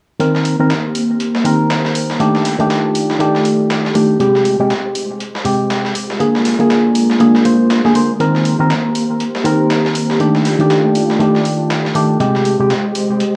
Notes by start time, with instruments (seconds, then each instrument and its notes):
0.20 synth stab D#3 C4 A#4, string machine A#3 G4 C5, closed hi-hat
0.35 snare
0.45 closed hi-hat, open hi-hat
0.59 synth stab D#3 C4 A#4
0.70 snare, closed hi-hat
0.95 closed hi-hat, open hi-hat
1.20 closed hi-hat
1.35 snare
1.44 synth stab D#3 C4 A#4, closed hi-hat, open hi-hat
1.70 snare, closed hi-hat
1.85 snare
1.95 closed hi-hat, open hi-hat
2.10 snare
2.20 synth stab D#3 A3 D4 G4, string machine A3 F4 G4 D5, closed hi-hat
2.35 snare
2.45 snare, closed hi-hat, open hi-hat
2.59 synth stab D#3 A3 D4 G4, closed hi-hat
2.70 snare, closed hi-hat
2.95 closed hi-hat, open hi-hat
3.10 snare
3.19 synth stab D#3 A3 D4 G4, closed hi-hat
3.35 snare
3.45 closed hi-hat, open hi-hat
3.70 snare, closed hi-hat
3.85 snare
3.95 synth stab D#3 A3 D4 G4, closed hi-hat, open hi-hat
4.20 synth stab C3 G#3 G4, string machine G#3 C5, closed hi-hat
4.35 snare
4.45 closed hi-hat, open hi-hat
4.59 synth stab C3 G#3 G4
4.70 snare, closed hi-hat
4.95 closed hi-hat, open hi-hat
5.20 closed hi-hat
5.35 snare
5.45 synth stab C3 G#3 G4, closed hi-hat, open hi-hat
5.70 snare, closed hi-hat
5.85 snare
5.95 string machine G#3 F4 A#4 D5, closed hi-hat, open hi-hat
6.10 snare
6.20 synth stab D3 A#3 G#4, closed hi-hat
6.35 snare
6.45 snare, closed hi-hat, open hi-hat
6.59 synth stab D3 A#3 G#4, closed hi-hat
6.70 snare, closed hi-hat
6.95 closed hi-hat, open hi-hat
7.10 snare
7.20 synth stab D3 A#3 G#4, closed hi-hat
7.35 snare
7.45 synth stab D3 A#3 C5, closed hi-hat, open hi-hat
7.70 snare, closed hi-hat
7.84 synth stab D3 A#3 G#4, snare
7.95 synth stab D3 A#3 C5, closed hi-hat, open hi-hat
8.20 synth stab D#3 C4 A#4, string machine A#3 G4 C5, closed hi-hat
8.35 snare
8.45 closed hi-hat, open hi-hat
8.59 synth stab D#3 C4 A#4
8.70 snare, closed hi-hat
8.95 closed hi-hat, open hi-hat
9.20 closed hi-hat
9.35 snare
9.44 synth stab D#3 C4 A#4, closed hi-hat, open hi-hat
9.70 snare, closed hi-hat
9.85 snare
9.95 closed hi-hat, open hi-hat
10.10 snare
10.20 synth stab D#3 A3 D4 G4, string machine A3 F4 D5, closed hi-hat
10.35 snare
10.45 snare, closed hi-hat, open hi-hat
10.59 synth stab D#3 A3 D4 G4, closed hi-hat
10.70 snare, closed hi-hat
10.95 closed hi-hat, open hi-hat
11.10 snare
11.19 synth stab D#3 A3 D4 G4, closed hi-hat
11.35 snare
11.45 closed hi-hat, open hi-hat
11.70 snare, closed hi-hat
11.85 snare
11.95 synth stab D#3 A3 D4 G4, closed hi-hat, open hi-hat
12.20 synth stab C3 G#3 G4, string machine G#3 G4 C5 D#5, closed hi-hat
12.35 snare
12.45 closed hi-hat, open hi-hat
12.59 synth stab C3 G#3 G4
12.70 snare, closed hi-hat
12.95 closed hi-hat, open hi-hat
13.20 closed hi-hat